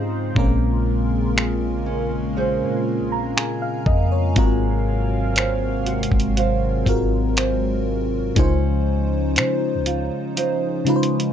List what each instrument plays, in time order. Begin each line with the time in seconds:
Already playing: 808-style bass G#2, analog synth pad C#3 D#4 F4 C5, fm electric piano C#3 G#3 C4 D#4 G#4, nylon-string guitar C#4 F4 C5 D#5
0.35 808-style bass A#1, fm electric piano A#2 G#3 C4 C#4, analog synth pad C#3 G#3 A#3 F4, nylon-string guitar A#3, kick
0.39 fm electric piano A#4
1.36 nylon-string guitar G#4, finger snap
1.86 nylon-string guitar C#4
2.36 nylon-string guitar C#4 G#4 C5
2.62 808-style bass A#2
3.00 808-style bass A#1
3.12 fm electric piano A#5
3.37 nylon-string guitar G#4, fm electric piano G#5, finger snap
3.62 fm electric piano F5
3.86 808-style bass F2, fm electric piano D#5, kick
4.12 fm electric piano C#5
4.35 808-style bass G#1, fm electric piano G#2 G#3 C4 F4 F#4, analog synth pad C3 F#3 F5, nylon-string guitar G#3, kick, closed hi-hat
4.39 fm electric piano A#4
5.36 nylon-string guitar C5, finger snap, closed hi-hat
5.86 nylon-string guitar F#4, closed hi-hat
6.03 closed hi-hat
6.12 808-style bass G#1, kick
6.20 closed hi-hat
6.36 analog synth pad G#3, nylon-string guitar F#4 C5 F5, closed hi-hat
6.85 808-style bass G#1, fm electric piano G#2 G#3 C4 F4 F#4, kick, closed hi-hat
6.89 fm electric piano A#4
7.36 nylon-string guitar C5, finger snap, closed hi-hat
8.35 808-style bass C#2, fm electric piano C#3 G#3 D#4 F4, analog synth pad C#3 F3 C#4 D#4, nylon-string guitar C#4, kick, closed hi-hat
8.39 fm electric piano C5
9.36 808-style bass C#3, nylon-string guitar C5, finger snap, closed hi-hat
9.75 808-style bass C#2
9.86 nylon-string guitar F4, closed hi-hat
10.37 nylon-string guitar F4 C5 D#5, closed hi-hat
10.85 fm electric piano C#3 G#3 D#4 F4, closed hi-hat
10.89 fm electric piano B4
10.96 fm electric piano C5
11.03 closed hi-hat
11.20 closed hi-hat